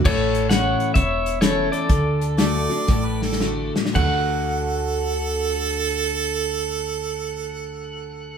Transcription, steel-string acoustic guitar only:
0.05 0.92 A2 medium
0.49 0.94 E3 medium
0.49 0.94 A3 medium
0.49 0.94 C#4 medium
0.49 0.94 E4 medium
0.95 1.86 E2 medium
1.41 1.87 E3 soft
1.41 1.88 A3 medium
1.41 1.88 C#4 medium
1.41 1.88 E4 soft
1.89 2.36 D3 loud
2.37 2.69 D3 medium
2.37 2.69 A3 medium
2.37 2.70 D4 medium
2.37 2.68 F#4 medium
2.69 2.88 D4 soft
2.69 2.87 F#4 medium
2.88 3.91 A2 medium
3.40 3.74 D3 medium
3.40 3.75 A3 medium
3.40 3.75 D4 medium
3.40 3.74 F#4 medium
3.75 3.94 D4 soft
3.75 3.94 F#4 soft
3.93 8.38 D3 medium
3.93 8.38 A3 medium
3.93 8.38 D4 medium
3.93 8.38 F#4 loud

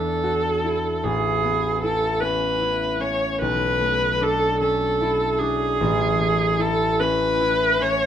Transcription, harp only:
0.00 1.06 E2 soft
0.00 1.42 B3 soft
0.00 1.06 D4 soft
0.00 0.63 E4 soft
0.00 1.70 A4 soft
0.23 1.06 F#4 soft
0.64 1.82 E4 soft
1.03 3.45 A1 soft
1.44 5.34 B3 soft
1.83 2.60 E4 soft
2.22 2.99 C#4 soft
2.61 5.00 E4 soft
3.00 4.59 C#4 soft
3.41 5.82 B1 medium
3.81 6.17 A3 soft
4.21 5.40 D4 soft
4.61 6.99 C#4 soft
5.01 6.58 E4 soft
5.41 5.83 D4 soft
5.81 8.06 A1 medium
6.19 8.06 A3 soft
6.59 7.39 E4 soft
7.00 7.79 C#4 medium
7.40 8.06 E4 soft
7.80 8.06 C#4 soft

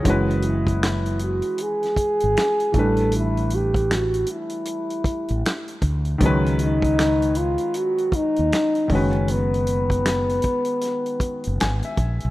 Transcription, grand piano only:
0.00 2.69 E3 medium
0.00 0.28 G#4 soft
0.00 0.28 C#5 medium
0.04 2.70 G#3 medium
0.04 2.71 C#4 medium
0.04 2.72 F#4 medium
0.10 2.73 B4 medium
2.72 5.77 E3 medium
2.72 5.78 A3 medium
2.72 5.79 D4 medium
2.77 5.80 G3 medium
2.77 5.80 B4 medium
6.18 8.85 D#3 medium
6.18 8.86 G#3 medium
6.18 8.86 C#4 medium
6.24 8.87 F#3 medium
6.24 8.88 B4 medium
8.88 11.92 D#3 medium
8.88 11.93 G#3 medium
8.88 11.94 C#4 medium
8.93 11.95 F#4 medium
8.93 11.96 B4 medium
11.61 11.82 G#5 medium
11.85 12.30 E5 medium

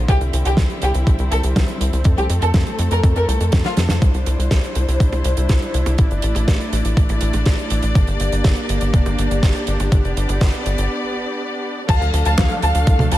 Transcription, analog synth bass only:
0.08 0.19 C2 loud
0.21 0.31 C2 medium
0.33 0.43 C2 medium
0.45 0.55 C2 medium
0.58 0.68 C2 loud
0.82 0.92 C2 medium
0.95 1.05 C2 medium
1.07 1.17 A#1 loud
1.19 1.29 C2 medium
1.31 1.41 C2 medium
1.44 1.54 C2 medium
1.56 1.66 C2 loud
1.81 1.91 C2 loud
1.93 2.03 C2 medium
2.05 2.15 F2 loud
2.17 2.28 C2 medium
2.30 2.40 F2 medium
2.42 2.52 F2 medium
2.54 2.64 F2 loud
2.79 2.89 F2 medium
2.91 3.01 F2 medium
3.04 3.14 F2 loud
3.16 3.26 F2 medium
3.28 3.38 C2 medium
3.40 3.50 F2 medium
3.53 3.63 F2 loud
3.77 3.87 F2 medium
3.90 4.00 F2 medium
4.02 4.12 C2 loud
4.14 4.24 C2 medium
4.26 4.37 C2 medium
4.39 4.49 C2 medium
4.51 4.61 C2 loud
4.76 4.86 C2 medium
4.88 4.98 C2 medium
5.00 5.10 A#1 loud
5.12 5.23 C2 medium
5.25 5.35 C2 loud
5.37 5.47 C2 medium
5.49 5.59 C2 loud
5.74 5.84 C2 medium
5.86 5.96 C2 medium
5.99 6.09 A1 loud
6.11 6.21 G1 medium
6.23 6.33 A1 medium
6.36 6.46 A1 medium
6.48 6.58 A1 loud
6.72 6.82 A1 medium
6.85 6.95 A1 medium
6.97 7.07 A1 loud
7.09 7.19 A1 medium
7.21 7.32 A1 loud
7.34 7.44 A1 medium
7.46 7.56 A1 loud
7.71 7.81 A1 medium
7.83 7.93 A1 medium
7.95 8.05 G1 loud
8.08 8.18 G1 medium
8.20 8.30 G1 medium
8.32 8.42 G1 medium
8.45 8.55 G1 loud
8.69 8.79 G1 medium
8.81 8.91 G1 medium
8.94 9.04 F1 loud
9.06 9.16 G1 medium
9.18 9.28 G1 medium
9.31 9.41 G1 medium
9.43 9.53 G1 loud
9.67 9.78 G1 medium
9.80 9.90 G1 medium
9.92 10.02 G1 loud
10.04 10.14 F1 medium
10.17 10.27 G1 medium
10.29 10.39 G1 medium
10.41 10.51 G1 loud
10.66 10.76 G1 medium
10.78 10.88 G1 medium
11.89 11.99 D2 loud
12.01 12.11 D2 medium
12.13 12.23 D2 medium
12.26 12.36 D2 medium
12.38 12.48 D2 loud
12.63 12.73 D2 medium
12.75 12.85 D2 medium
12.87 12.97 C2 loud
12.99 13.10 D2 medium
13.12 13.18 D2 loud

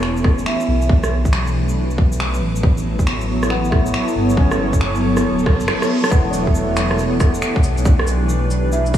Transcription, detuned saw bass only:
0.00 0.45 E1 loud
0.68 2.41 B1 medium
2.42 2.62 A1 medium
2.63 3.93 A1 loud
4.16 5.26 G1 medium
5.24 5.48 D1 medium
5.46 5.62 B1 loud
5.61 5.68 F#1 loud
6.11 7.41 E1 loud
7.63 8.98 B1 medium

